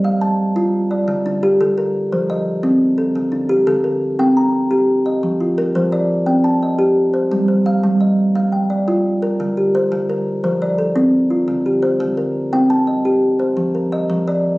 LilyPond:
<<
  \new Staff \with { instrumentName = "Kalimba" } { \time 12/8 \key c \dorian \tempo 4. = 115 <ees'' f''>8 a''4. r8 d''4 d'8 g'8 a'8 bes'4 | c''8 ees''4. r8 a'4 d'8 g'8 a'8 bes'4 | g''8 bes''4. r8 ees''4 f'8 bes'8 c''8 d''4 | g''8 a''8 ees''4. c''4 c''8 f''4 ees''4 |
f''8 g''8 d''4. bes'4 g'8 c''4 bes'4 | c''8 d''8 a'4. f'4 g'8 c''4 bes'4 | g''8 a''8 ees''4. c''4 bes'8 ees''4 d''4 | }
  \new Staff \with { instrumentName = "Kalimba" } { \clef bass \time 12/8 \key c \dorian bes4 r8 f'4 r8 d4 r8 d4 r8 | f4 r8 c'4 r8 d4 r8 d4 r8 | c'4 r8 g'4 r8 f4 r8 f4 r8 | c'4 r8 g'4 r8 g4 r8 g4 r8 |
bes4 r8 f'4 r8 d4 r8 d4 r8 | f4 r8 c'4 r8 d4 r8 d4 r8 | c'4 r8 g'4 r8 f4 r8 f4 r8 | }
>>